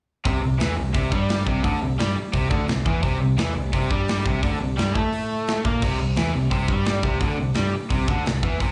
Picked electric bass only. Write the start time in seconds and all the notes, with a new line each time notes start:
0.26 C2
0.44 C2
0.60 E2
0.79 C2
0.95 C2
1.12 G2
1.47 C2
1.64 D2
1.82 C2
1.99 G2
2.16 muted picked electric bass stroke
2.34 C2
2.51 D2
2.68 C2
2.86 E2
3.03 C2
3.20 C2
3.37 E2
3.56 C2
3.73 C2
3.91 G2
4.26 C2
4.43 D2
4.61 C2
4.78 G2
4.95 A2
5.65 A#2
5.82 C2
5.99 C2
6.16 E2
6.35 C2
6.51 C2
6.69 G2
7.04 C2
7.21 D2
7.39 C2
7.57 G2
7.75 muted picked electric bass stroke
7.90 C2
8.09 D2
8.28 C2
8.43 E2
8.61 C2